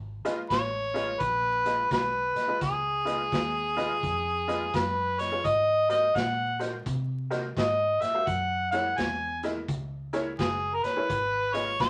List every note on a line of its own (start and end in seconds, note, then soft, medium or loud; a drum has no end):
0.00 0.22 G#1 medium
0.25 0.38 F4 medium
0.25 0.38 G#4 medium
0.25 0.38 B4 medium
0.25 0.38 D#5 medium
0.25 snare soft
0.25 closed hi-hat medium
0.50 1.19 A1 medium
0.50 1.22 C#5 medium
0.50 kick medium
0.50 snare loud
0.50 closed hi-hat medium
0.94 1.08 F4 medium
0.94 1.08 G#4 medium
0.94 1.08 B4 medium
0.94 1.08 D#5 medium
0.94 snare soft
0.94 closed hi-hat medium
1.20 1.89 A#1 medium
1.20 1.91 B4 medium
1.20 kick medium
1.20 closed hi-hat medium
1.65 1.79 F4 medium
1.65 1.79 G#4 medium
1.65 1.79 B4 medium
1.65 1.79 D#5 medium
1.65 snare soft
1.65 closed hi-hat medium
1.91 2.33 B1 medium
1.91 2.58 B4 medium
1.91 kick medium
1.91 snare loud
1.91 closed hi-hat medium
2.35 2.42 B4 soft
2.35 2.43 D#5 medium
2.35 muted fingered electric bass stroke soft
2.35 snare soft
2.35 closed hi-hat medium
2.48 2.61 F4 medium
2.48 2.62 G#4 medium
2.48 2.62 B4 medium
2.48 2.62 D#5 medium
2.61 3.30 C#2 medium
2.61 4.78 G#4 medium
2.61 kick medium
2.61 snare soft
2.61 closed hi-hat medium
3.05 3.19 F4 medium
3.05 3.19 G#4 medium
3.05 3.19 B4 medium
3.05 3.20 D#5 medium
3.05 snare soft
3.05 closed hi-hat medium
3.32 4.01 D#2 medium
3.32 kick medium
3.32 snare loud
3.32 closed hi-hat medium
3.77 3.90 F4 medium
3.77 3.90 G#4 medium
3.77 3.90 B4 medium
3.77 3.90 D#5 medium
3.77 snare soft
3.77 closed hi-hat medium
4.03 4.72 F2 medium
4.03 kick medium
4.03 closed hi-hat medium
4.48 4.61 F4 medium
4.48 4.61 G#4 medium
4.48 4.61 B4 medium
4.48 4.61 D#5 medium
4.48 snare soft
4.48 closed hi-hat medium
4.74 5.42 F#2 medium
4.74 5.22 B4 medium
4.74 kick medium
4.74 snare loud
4.74 closed hi-hat medium
5.18 5.25 B4 soft
5.18 5.47 C#5 medium
5.18 5.25 D#5 soft
5.18 snare soft
5.18 closed hi-hat medium
5.32 5.44 F4 medium
5.32 5.45 G#4 medium
5.32 5.45 B4 medium
5.32 5.45 C#5 medium
5.44 6.13 G#2 medium
5.44 5.90 D#5 loud
5.44 kick medium
5.44 closed hi-hat medium
5.89 6.02 F#4 medium
5.89 6.02 A#4 medium
5.89 6.02 C5 medium
5.89 6.02 D#5 medium
5.89 6.17 D#5 medium
5.89 snare soft
5.89 closed hi-hat medium
6.15 6.84 A#2 medium
6.15 6.60 F#5 loud
6.15 kick medium
6.15 snare loud
6.15 closed hi-hat medium
6.59 6.72 F#4 medium
6.59 6.73 A#4 medium
6.59 6.73 C5 medium
6.59 6.73 D#5 medium
6.59 snare soft
6.59 closed hi-hat medium
6.86 7.54 C3 medium
6.86 kick medium
6.86 closed hi-hat medium
7.30 7.43 F#4 medium
7.30 7.43 A#4 medium
7.30 7.43 C5 medium
7.30 7.44 D#5 medium
7.30 snare soft
7.30 closed hi-hat medium
7.57 7.98 G#2 medium
7.57 8.03 D#5 medium
7.57 kick medium
7.57 snare loud
7.57 closed hi-hat medium
8.01 8.07 C5 soft
8.01 8.29 E5 medium
8.01 8.08 F#5 soft
8.01 muted fingered electric bass stroke soft
8.01 snare soft
8.01 closed hi-hat medium
8.14 8.27 F#4 medium
8.14 8.27 A#4 medium
8.14 8.27 C5 medium
8.14 8.27 F5 medium
8.27 8.95 F#2 medium
8.27 8.71 F#5 medium
8.27 kick medium
8.27 closed hi-hat medium
8.71 8.85 E4 medium
8.71 8.85 G#4 medium
8.71 8.85 A#4 medium
8.71 8.86 C#5 medium
8.71 8.99 F#5 medium
8.71 snare soft
8.71 closed hi-hat medium
8.97 9.66 E2 medium
8.97 9.42 G#5 loud
8.97 kick medium
8.97 snare loud
8.97 closed hi-hat medium
9.43 9.56 E4 medium
9.43 9.56 G#4 medium
9.43 9.56 A#4 medium
9.43 9.56 D#5 medium
9.43 snare soft
9.43 closed hi-hat medium
9.68 10.37 C#2 medium
9.68 kick medium
9.68 closed hi-hat medium
10.13 10.26 E4 medium
10.13 10.26 G#4 medium
10.13 10.26 A#4 medium
10.13 10.26 C#5 medium
10.13 snare soft
10.13 closed hi-hat medium
10.39 10.80 F#1 medium
10.39 10.76 G#4 medium
10.39 kick medium
10.39 snare loud
10.39 closed hi-hat medium
10.74 10.84 A#4 medium
10.83 10.90 A#4 soft
10.83 11.56 B4 loud
10.83 10.90 C#5 soft
10.83 snare soft
10.83 closed hi-hat medium
10.96 11.09 E4 medium
10.96 11.09 G#4 medium
10.96 11.10 A#4 medium
10.96 11.10 C#5 medium
11.09 11.78 G#1 medium
11.09 kick medium
11.09 closed hi-hat medium
11.54 11.67 F4 medium
11.54 11.67 G#4 medium
11.54 11.67 B4 medium
11.54 11.80 C#5 loud
11.54 11.67 D#5 medium
11.54 snare soft
11.54 closed hi-hat medium
11.80 11.90 A#1 loud
11.80 11.90 C#5 loud
11.80 kick medium
11.80 snare loud
11.80 closed hi-hat medium